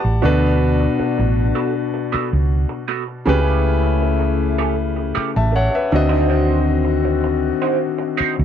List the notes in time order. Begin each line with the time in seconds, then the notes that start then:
Already playing: G3 F#4 A4 B4 D5 F#5 A5
0.05 A1, muted clean electric guitar stroke
0.22 D2 B2 B3 D4 F#4 A4 B4
0.80 muted clean electric guitar stroke
0.99 muted clean electric guitar stroke, muted fingered electric bass stroke
1.18 A1, muted clean electric guitar stroke
1.55 B3 F#4 A4
1.94 muted clean electric guitar stroke
2.12 B3 F#4 A4, muted fingered electric bass stroke
2.32 C#2, muted clean electric guitar stroke
2.69 muted clean electric guitar stroke
2.88 B3 F#4 A4
3.08 muted clean electric guitar stroke
3.26 C#2 C#3 A3 C4 C#4 E4 F#4 G4 G#4 B4
3.41 C#4 G4 A4
3.83 muted clean electric guitar stroke
4.02 muted clean electric guitar stroke
4.20 muted clean electric guitar stroke
4.58 C#4 G4 A4
4.96 muted clean electric guitar stroke
5.15 C#4 G4 A4, muted fingered electric bass stroke
5.34 A1 E5 A5, muted clean electric guitar stroke
5.52 F#5, muted clean electric guitar stroke
5.56 C#5
5.71 muted clean electric guitar stroke
5.75 B4 E5
5.92 D2 D3 D#3 C4 F#4 D#5
6.09 D#4 F#4 C5
6.28 D#4 F#4 C5
6.85 muted clean electric guitar stroke
7.04 muted clean electric guitar stroke
7.24 muted clean electric guitar stroke
7.62 D#4 F#4 C5
7.98 muted clean electric guitar stroke
8.17 D#4 F#4 C5, muted fingered electric bass stroke
8.36 D2, muted clean electric guitar stroke